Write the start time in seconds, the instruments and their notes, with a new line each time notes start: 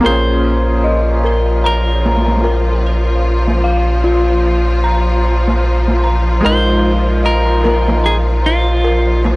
0.01 string section F3 F4, felt piano A#3 F4, synth bell A#4, ride
0.05 sub bass A#1, felt piano G#4, clean electric guitar C5
0.09 felt piano C#4
0.44 ride
0.84 synth bell D#5, ride
1.24 synth bell A#4, ride
1.64 clean electric guitar A#4, synth bell A#5, ride
2.04 snare, ride
2.16 snare, ride
2.27 snare, ride
2.35 snare, ride
2.44 synth bell A#4, ride
2.84 ride
3.23 ride
3.47 snare
3.64 synth bell F5, ride
4.04 synth bell F4, ride
4.44 ride
4.84 synth bell A#5, ride
5.24 open hi-hat
5.48 snare
5.64 ride
5.88 snare
6.04 synth bell A#5, ride
6.41 sub bass A#1, felt piano G#3, synth bell A#4
6.45 felt piano D#4, clean electric guitar C5, ride
6.49 felt piano F4
6.85 ride
7.24 clean electric guitar A#4, synth bell D#5, ride
7.64 synth bell A#4, snare, ride
7.86 snare, ride
8.04 clean electric guitar G#4, synth bell A#5, ride
8.45 clean electric guitar F4, ride
8.84 synth bell A#4, ride
9.24 snare, ride